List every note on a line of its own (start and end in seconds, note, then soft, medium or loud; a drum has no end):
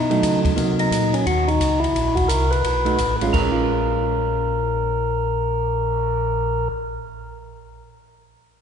0.00 0.22 B2 medium
0.00 0.41 D#4 medium
0.10 0.54 F#3 medium
0.10 0.55 A3 medium
0.10 0.55 D#4 medium
0.10 ride soft
0.23 0.56 C#3 medium
0.23 kick soft
0.23 hi-hat pedal soft
0.23 ride medium
0.45 kick medium
0.45 ride soft
0.56 0.91 C3 medium
0.56 1.25 F#3 soft
0.56 1.26 A#3 medium
0.56 1.26 D#4 medium
0.56 kick soft
0.56 ride medium
0.79 1.15 D#4 medium
0.79 ride soft
0.91 1.25 A#2 medium
0.91 kick soft
0.91 hi-hat pedal medium
0.91 ride medium
1.14 1.26 C#4 medium
1.14 ride soft
1.26 1.59 D#2 medium
1.26 1.49 F#4 medium
1.26 kick soft
1.26 ride soft
1.48 1.80 D#4 medium
1.48 ride soft
1.60 1.94 C#2 medium
1.60 kick soft
1.60 hi-hat pedal medium
1.60 ride medium
1.80 2.17 E4 medium
1.84 ride soft
1.95 2.29 A#1 medium
1.95 kick soft
1.95 ride medium
2.15 2.29 F#4 medium
2.15 kick soft
2.15 ride soft
2.28 2.63 C2 medium
2.28 2.52 A#4 medium
2.28 kick soft
2.28 hi-hat pedal medium
2.28 ride medium
2.51 3.16 B4 medium
2.51 ride soft
2.64 2.98 B1 medium
2.64 kick soft
2.64 ride medium
2.85 2.97 A3 soft
2.85 2.97 D#4 medium
2.85 2.97 F#4 soft
2.85 ride soft
2.98 3.32 A1 medium
2.98 kick soft
2.98 hi-hat pedal soft
2.98 ride soft
3.21 3.26 G#3 medium
3.21 3.32 C#4 medium
3.21 3.33 F4 medium
3.21 ride soft
3.27 6.66 G#3 medium
3.33 6.69 A#1 medium
3.33 6.68 A#4 medium
3.33 kick soft
3.33 crash soft
3.41 6.81 C#4 soft
3.52 6.91 F4 medium
3.56 cymbal swell soft